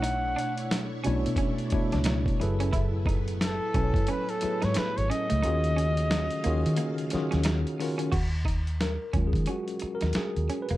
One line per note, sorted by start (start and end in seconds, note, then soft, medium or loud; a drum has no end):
0.00 0.34 B1 medium
0.00 0.84 B2 medium
0.00 0.85 A3 medium
0.00 2.37 A3 medium
0.00 0.85 D4 medium
0.00 2.37 D4 medium
0.00 0.19 D#4 medium
0.00 0.85 E4 medium
0.00 2.37 E4 medium
0.00 0.86 C#5 medium
0.00 2.37 C#5 medium
0.00 0.87 F#5 loud
0.00 closed hi-hat medium
0.36 0.53 D4 medium
0.36 closed hi-hat medium
0.57 closed hi-hat medium
0.71 snare loud
0.71 closed hi-hat loud
1.04 1.24 B1 medium
1.04 1.63 B2 medium
1.04 1.63 A3 medium
1.04 1.21 C#4 medium
1.04 1.64 D4 medium
1.04 1.64 E4 medium
1.04 1.64 C#5 loud
1.04 closed hi-hat medium
1.26 1.38 B2 loud
1.26 closed hi-hat soft
1.36 1.55 C#4 medium
1.36 kick medium
1.36 closed hi-hat loud
1.58 closed hi-hat soft
1.70 2.30 B2 medium
1.70 2.31 A3 medium
1.70 2.31 D4 medium
1.70 2.31 E4 medium
1.70 2.32 C#5 loud
1.70 muted clean electric guitar stroke soft
1.70 muted fingered electric bass stroke soft
1.70 kick medium
1.70 closed hi-hat medium
1.92 2.24 C#2 medium
1.92 2.04 D4 medium
1.92 snare soft
1.92 closed hi-hat medium
2.04 2.22 D#4 medium
2.04 snare loud
2.04 closed hi-hat loud
2.26 kick loud
2.26 closed hi-hat soft
2.40 3.58 F#1 loud
2.40 5.40 A2 medium
2.40 3.55 F#3 medium
2.40 8.09 A3 medium
2.40 5.40 B3 medium
2.40 3.55 E4 medium
2.40 5.40 E4 medium
2.40 3.55 G#4 medium
2.40 3.55 A4 medium
2.40 3.56 B4 medium
2.40 muted clean electric guitar stroke soft
2.40 closed hi-hat medium
2.60 2.71 C#4 medium
2.60 closed hi-hat medium
2.73 2.89 E4 medium
2.73 kick loud
2.73 closed hi-hat medium
3.06 3.23 D#4 medium
3.06 kick medium
3.06 closed hi-hat medium
3.28 closed hi-hat soft
3.41 4.12 A4 loud
3.41 snare loud
3.41 closed hi-hat loud
3.74 3.93 B1 medium
3.74 4.33 F#3 medium
3.74 3.91 C#4 medium
3.74 4.33 E4 medium
3.74 4.34 A4 medium
3.74 3.84 B4 medium
3.74 4.34 G#5 medium
3.74 kick medium
3.74 closed hi-hat medium
3.84 4.38 C#5 medium
3.94 4.07 F#2 loud
3.94 kick loud
3.94 closed hi-hat soft
4.07 4.25 C#4 medium
4.07 4.31 B4 medium
4.07 closed hi-hat medium
4.29 4.66 A4 loud
4.29 closed hi-hat soft
4.41 5.30 F#3 medium
4.41 5.30 E4 medium
4.41 5.30 G#4 medium
4.41 5.31 A4 medium
4.41 5.31 B4 medium
4.41 muted clean electric guitar stroke soft
4.41 muted fingered electric bass stroke soft
4.41 closed hi-hat medium
4.62 4.75 G#2 medium
4.62 4.73 D#4 medium
4.62 4.79 C#5 loud
4.62 snare soft
4.62 closed hi-hat soft
4.74 4.99 B4 loud
4.74 muted clean electric guitar stroke soft
4.74 muted fingered electric bass stroke medium
4.74 snare loud
4.74 closed hi-hat medium
4.97 5.09 G#1 medium
4.97 5.12 C#5 loud
4.97 closed hi-hat soft
5.10 5.26 C#4 medium
5.10 7.46 D#5 loud
5.10 closed hi-hat medium
5.30 5.43 C#2 medium
5.30 5.41 A3 medium
5.30 closed hi-hat medium
5.43 6.28 D#2 loud
5.43 8.10 C#3 medium
5.43 6.31 D#3 loud
5.43 8.10 F#3 medium
5.43 6.31 C#4 medium
5.43 5.59 D#4 medium
5.43 6.31 F4 medium
5.43 6.32 F#4 medium
5.43 6.32 G#4 loud
5.43 8.10 F5 medium
5.43 closed hi-hat medium
5.64 closed hi-hat soft
5.76 5.93 C#4 medium
5.76 closed hi-hat medium
5.97 closed hi-hat soft
6.11 snare loud
6.11 closed hi-hat medium
6.31 closed hi-hat soft
6.44 6.63 D#2 medium
6.44 7.03 D#3 medium
6.44 6.60 A#3 medium
6.44 7.03 C#4 medium
6.44 7.04 F4 medium
6.44 7.04 F#4 medium
6.44 7.04 G#4 loud
6.44 closed hi-hat medium
6.66 6.78 D#3 loud
6.66 closed hi-hat medium
6.76 6.94 A#3 medium
6.76 closed hi-hat loud
6.98 closed hi-hat soft
7.10 7.71 D#3 medium
7.10 7.71 C#4 medium
7.10 7.71 F4 medium
7.10 7.71 F#4 medium
7.10 muted clean electric guitar stroke soft
7.10 muted fingered electric bass stroke medium
7.10 snare soft
7.10 closed hi-hat medium
7.15 7.72 G#4 medium
7.31 7.63 D#2 loud
7.31 7.42 C#4 medium
7.31 snare soft
7.31 closed hi-hat soft
7.44 7.61 D#4 medium
7.44 snare loud
7.44 closed hi-hat loud
7.67 closed hi-hat soft
7.80 8.09 D#3 medium
7.80 8.09 C#4 medium
7.80 8.09 F4 medium
7.80 8.09 F#4 medium
7.80 8.10 A#4 medium
7.80 muted clean electric guitar stroke soft
7.80 open hi-hat medium
7.98 8.09 C#4 medium
7.98 closed hi-hat medium
8.12 8.96 D#2 loud
8.12 8.28 F#4 medium
8.12 kick loud
8.12 closed hi-hat medium
8.12 crash medium
8.45 8.62 D#4 medium
8.45 kick medium
8.45 closed hi-hat medium
8.67 closed hi-hat soft
8.81 9.27 A#4 medium
8.81 snare loud
8.81 closed hi-hat medium
9.13 9.32 D#2 medium
9.13 9.62 F#3 medium
9.13 9.62 G#3 soft
9.13 9.30 C#4 medium
9.13 9.62 C#4 soft
9.13 9.62 F4 medium
9.13 kick medium
9.13 closed hi-hat medium
9.27 9.47 G#4 medium
9.33 9.46 D#3 medium
9.33 kick medium
9.33 closed hi-hat soft
9.46 9.64 C#4 medium
9.46 9.95 F#4 medium
9.46 closed hi-hat medium
9.68 closed hi-hat soft
9.79 muted clean electric guitar stroke soft
9.79 muted fingered electric bass stroke soft
9.79 closed hi-hat medium
9.95 10.17 A#4 medium
10.01 10.14 D#2 medium
10.01 10.13 D#4 medium
10.01 snare soft
10.01 closed hi-hat soft
10.13 muted fingered electric bass stroke soft
10.13 muted clean electric guitar stroke soft
10.13 snare loud
10.13 closed hi-hat medium
10.18 10.62 G#4 medium
10.36 10.48 D#2 medium
10.36 closed hi-hat soft
10.50 10.66 C#4 medium
10.50 closed hi-hat medium
10.62 10.77 B4 medium
10.69 10.77 F1 medium
10.69 10.77 A#3 medium
10.69 closed hi-hat soft